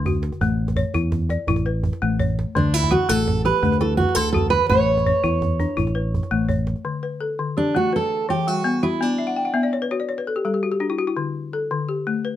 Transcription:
0.00 0.29 D2 medium
0.00 0.23 D3 medium
0.06 0.59 F#4 medium
0.06 djembe tone medium
0.06 djembe bass medium
0.14 djembe slap soft
0.23 djembe slap medium
0.32 djembe tone soft
0.41 0.82 A1 loud
0.41 0.77 A3 medium
0.41 djembe bass medium
0.68 djembe slap medium
0.68 djembe tone medium
0.76 1.30 C#5 medium
0.76 djembe bass medium
0.94 1.36 E2 medium
0.94 1.30 E4 medium
0.94 djembe tone medium
1.12 djembe slap medium
1.12 djembe bass medium
1.29 1.84 D5 medium
1.29 djembe tone medium
1.47 1.90 A1 medium
1.47 1.84 E4 medium
1.47 djembe bass medium
1.56 djembe slap medium
1.56 djembe tone medium
1.66 2.20 B4 medium
1.83 djembe tone medium
1.83 djembe bass medium
1.93 djembe slap medium
2.02 2.44 A1 medium
2.02 2.38 A3 medium
2.20 2.73 C#5 medium
2.20 djembe slap soft
2.20 djembe tone medium
2.20 djembe bass medium
2.30 djembe slap soft
2.39 djembe slap medium
2.55 2.97 D2 medium
2.55 2.91 D3 medium
2.55 2.74 D4 medium
2.55 djembe bass medium
2.74 2.92 E4 medium
2.83 djembe slap medium
2.83 djembe tone medium
2.91 3.45 F#4 medium
2.91 3.09 F#4 medium
2.91 djembe bass medium
3.09 3.51 A1 medium
3.09 3.45 A3 medium
3.09 3.45 A4 medium
3.09 djembe tone medium
3.28 djembe slap medium
3.28 djembe bass medium
3.45 3.99 G4 medium
3.45 3.80 B4 medium
3.45 djembe tone medium
3.63 4.04 D2 medium
3.63 3.99 A3 medium
3.63 djembe bass medium
3.72 djembe slap medium
3.72 djembe tone medium
3.81 4.34 E4 medium
3.81 3.97 A4 medium
3.97 4.15 F#4 medium
3.97 djembe bass medium
4.09 djembe slap medium
4.15 4.58 D2 medium
4.15 4.52 D3 medium
4.15 4.31 A4 loud
4.33 4.88 F#4 medium
4.33 4.50 A4 medium
4.33 djembe slap soft
4.33 djembe tone medium
4.33 djembe bass medium
4.45 djembe slap soft
4.50 4.69 B4 medium
4.50 djembe slap medium
4.62 djembe tone medium
4.69 5.11 A1 loud
4.69 5.06 A3 medium
4.69 6.45 C#5 medium
4.69 djembe bass medium
4.89 djembe slap soft
4.97 djembe slap medium
4.97 djembe tone medium
5.06 5.60 C#5 medium
5.06 djembe slap soft
5.06 djembe bass medium
5.24 5.65 E2 medium
5.24 5.60 E4 medium
5.24 djembe tone medium
5.42 djembe slap medium
5.42 djembe bass medium
5.60 6.13 D4 medium
5.60 djembe tone medium
5.69 djembe slap soft
5.77 6.19 A1 medium
5.77 6.13 E4 medium
5.77 djembe bass medium
5.87 djembe slap soft
5.87 djembe tone soft
5.95 6.49 B4 medium
6.14 djembe slap soft
6.14 djembe tone medium
6.14 djembe bass medium
6.23 djembe slap soft
6.31 6.73 A1 medium
6.31 6.67 A3 medium
6.49 7.03 C#5 medium
6.49 djembe tone medium
6.49 djembe bass medium
6.58 djembe slap soft
6.67 djembe slap medium
6.76 djembe tone soft
6.85 7.21 D3 medium
7.03 7.57 B4 medium
7.21 7.75 A4 medium
7.39 7.75 D3 medium
7.57 7.76 D4 medium
7.57 8.11 G4 medium
7.75 7.93 A3 medium
7.75 7.92 F#4 medium
7.93 8.30 A4 medium
7.93 8.47 B4 medium
8.29 8.65 E3 medium
8.29 8.48 G4 medium
8.47 9.01 G3 medium
8.47 8.84 F#4 medium
8.64 9.00 B3 medium
8.83 9.02 E4 medium
8.83 9.19 F#4 medium
9.01 9.37 B3 medium
9.01 9.74 D4 medium
9.18 9.35 E5 medium
9.27 9.44 F#5 medium
9.36 9.53 G5 medium
9.45 9.62 F#5 medium
9.54 9.90 B3 medium
9.54 9.71 E5 medium
9.63 9.80 D5 medium
9.73 9.90 C#5 medium
9.82 9.99 B4 medium
9.91 10.09 F#4 medium
9.91 10.08 C#5 medium
10.00 10.16 D5 medium
10.09 10.25 C#5 medium
10.18 10.35 B4 medium
10.27 10.44 A4 medium
10.36 10.53 G4 medium
10.45 10.81 G3 medium
10.45 10.62 A4 medium
10.54 10.70 G4 medium
10.63 10.79 F#4 medium
10.72 10.88 G4 medium
10.80 11.16 D4 medium
10.80 10.97 F#4 medium
10.90 11.06 E4 medium
10.99 11.15 F#4 medium
11.07 11.24 E4 medium
11.17 11.53 D3 medium
11.53 12.07 A4 medium
11.71 12.07 D3 medium
11.89 12.36 G4 medium
12.07 12.25 A3 medium
12.25 12.36 B4 medium

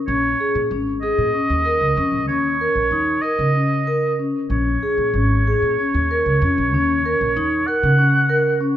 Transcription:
0.07 0.33 A#1 medium
0.07 0.32 C#4 medium
0.07 0.66 C#5 medium
0.40 0.63 G#4 medium
0.55 0.68 A#2 medium
0.71 1.09 G#1 medium
0.71 0.95 C#4 medium
1.02 1.26 G#4 medium
1.02 2.24 D#5 loud
1.18 1.31 A#2 medium
1.34 1.58 C#4 medium
1.50 1.75 D#2 medium
1.66 1.89 A#4 medium
1.81 1.94 C#2 medium
1.97 2.10 F2 medium
1.97 2.20 C#4 medium
2.12 2.28 A#1 medium
2.28 2.66 D#2 medium
2.28 2.52 C#4 medium
2.28 3.23 C#5 medium
2.61 2.84 A#4 medium
2.75 2.88 A#1 medium
2.91 3.17 D#2 medium
2.91 3.15 D#4 medium
3.21 3.47 A#4 medium
3.21 4.18 D#5 medium
3.39 4.29 C#3 medium
3.55 3.79 C#4 medium
3.87 4.11 A#4 medium
4.19 4.43 C#4 medium
4.50 4.76 A#1 medium
4.50 4.75 C#4 medium
4.50 7.68 C#5 medium
4.83 5.06 G#4 medium
4.98 5.11 A#2 medium
5.13 5.52 G#1 medium
5.13 5.39 C#4 medium
5.47 5.71 G#4 medium
5.62 5.75 A#2 medium
5.79 6.02 C#4 medium
5.94 6.20 D#2 medium
6.11 6.34 A#4 medium
6.26 6.38 C#2 medium
6.42 6.54 F2 medium
6.42 6.66 C#4 medium
6.58 6.74 A#1 medium
6.74 7.12 D#2 medium
6.74 6.97 C#4 medium
7.06 7.28 A#4 medium
7.21 7.33 A#1 medium
7.36 7.61 D#2 medium
7.36 7.60 D#4 medium
7.67 7.91 A#4 medium
7.67 8.60 F#5 loud
7.83 8.71 C#3 medium
7.98 8.22 C#4 medium
8.29 8.52 A#4 medium
8.61 8.77 C#4 medium

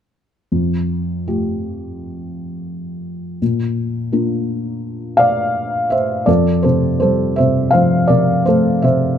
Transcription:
0.52 3.37 F2 soft
1.27 3.38 A3 soft
1.27 3.38 F4 soft
1.27 3.38 G4 soft
3.42 6.24 A#2 soft
4.12 6.24 A#3 soft
4.12 6.25 D4 soft
4.12 6.25 F4 soft
5.17 5.88 D5 soft
5.17 5.93 F5 medium
5.90 6.26 C5 soft
5.90 6.29 E5 medium
6.26 9.17 F2 soft
6.26 6.63 A4 soft
6.26 6.66 D5 medium
6.63 7.38 C3 soft
6.63 6.99 A4 soft
6.63 6.98 C5 medium
7.00 8.43 G3 soft
7.00 7.37 A4 soft
7.00 7.36 C5 medium
7.36 8.08 C3 soft
7.36 7.71 C5 soft
7.36 7.75 E5 medium
7.71 9.17 F3 soft
7.71 8.08 C5 medium
7.71 8.07 F5 medium
8.08 8.82 C3 soft
8.08 8.44 A#4 soft
8.08 8.43 D5 medium
8.46 9.18 A3 soft
8.46 8.82 A4 soft
8.46 8.83 C5 medium
8.82 9.18 C3 soft
8.82 9.18 C5 soft
8.82 9.18 E5 medium

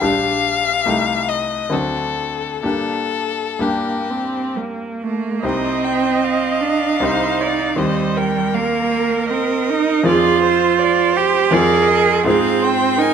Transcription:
0.01 0.84 A#1 soft
0.01 0.84 G3 soft
0.01 0.67 G3 soft
0.01 0.84 D4 soft
0.01 0.66 D4 soft
0.01 0.84 G4 soft
0.01 1.30 F5 medium
0.86 1.68 C2 soft
0.86 1.51 G3 soft
0.86 1.68 A3 soft
0.86 1.50 A3 soft
0.86 1.69 D#4 soft
0.86 1.69 G4 soft
1.29 1.73 D#5 medium
1.70 2.60 D2 soft
1.70 2.40 F#3 soft
1.70 2.60 C4 soft
1.70 2.41 C4 soft
1.70 2.60 D4 soft
1.70 2.60 F#4 soft
1.70 2.63 A4 medium
2.63 3.57 G2 soft
2.63 3.57 A#3 soft
2.63 3.58 D4 soft
2.63 3.58 G4 soft
2.63 3.63 A4 medium
3.59 5.39 G2 soft
3.59 4.32 G3 soft
3.59 5.39 A#3 soft
3.59 4.12 A#3 soft
3.59 5.39 D4 soft
3.59 5.39 G4 soft
3.59 4.55 G4 soft
4.11 4.58 C4 soft
4.56 4.98 G3 soft
4.56 5.05 A#3 soft
5.03 5.45 A3 soft
5.03 5.46 A#3 medium
5.43 6.96 C2 soft
5.43 6.96 C4 soft
5.43 6.63 C4 medium
5.43 6.97 D#4 soft
5.43 6.97 G4 soft
5.43 5.86 D#5 soft
5.43 7.04 D#5 medium
5.84 6.26 G5 soft
6.24 7.79 F5 medium
6.61 7.04 D4 medium
7.00 7.74 C2 soft
7.00 7.75 C4 soft
7.00 7.75 D#4 soft
7.00 7.78 D#4 medium
7.00 7.75 G4 soft
7.00 7.42 C5 medium
7.40 7.78 D5 medium
7.76 10.00 D#2 soft
7.76 8.56 G3 medium
7.76 10.00 C4 soft
7.76 10.00 G4 soft
7.76 8.18 C5 medium
7.76 8.18 D#5 soft
8.16 10.07 A#4 medium
8.16 8.56 G5 soft
8.54 9.32 A#3 medium
8.54 9.29 F5 medium
9.30 9.71 C4 medium
9.30 10.07 D#5 medium
9.70 10.06 D#4 medium
10.03 11.48 F2 soft
10.03 11.48 C4 soft
10.03 11.48 F4 soft
10.03 11.19 F4 medium
10.03 11.48 G#4 soft
10.03 10.43 G#4 medium
10.03 10.41 D5 medium
10.42 10.78 C5 medium
10.42 10.81 C5 medium
10.79 11.51 C5 medium
10.79 11.15 D5 medium
11.15 11.55 G4 medium
11.15 11.53 C5 medium
11.51 12.23 F2 medium
11.51 12.23 C4 soft
11.51 12.24 F4 soft
11.51 12.24 G#4 soft
11.51 12.26 G#4 medium
11.51 12.24 A#4 medium
11.51 11.90 D5 medium
11.88 12.25 D#5 medium
12.25 13.14 G#2 medium
12.25 13.14 C4 soft
12.25 13.00 C4 medium
12.25 13.14 F4 soft
12.25 12.64 G#4 medium
12.25 13.14 G#4 soft
12.25 12.65 F5 medium
12.62 12.99 C5 medium
12.62 13.03 G5 medium
12.99 13.14 D#4 loud
12.99 13.14 A#4 medium
12.99 13.14 G#5 medium

